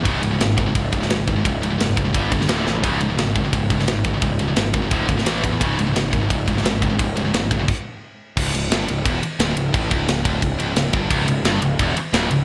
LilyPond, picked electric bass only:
\new Staff \with { instrumentName = "Picked electric bass" } { \clef bass \time 4/4 \key cis \minor \tempo 4 = 174 cis,,4 gis,,4 cis,,8 cis,,8 gis,,8 gis,,8 | cis,,4 fis,,4 g,,8 g,,8 d,,8 a,,8 | cis,,4 gis,,4 cis,,8 cis,,8 gis,,8 gis,,8 | cis,,4 gis,,4 d,,8 gis,,8 a,,8 e,8 |
cis,,4 gis,,4 cis,,8 cis,,8 gis,,8 gis,,8 | cis,,4 gis,,4 r2 | cis,,8 cis,,8 g,,8 cis,,8 e,,8 r8 d,,8 cis,,8 | a,,8 cis,,8 cis,,8 d,,8 cis,,8 cis,,8 cis,,8 g,,8 |
cis,,8 cis,,8 g,,8 cis,,8 e,,8 r8 d,,8 cis,,8 | }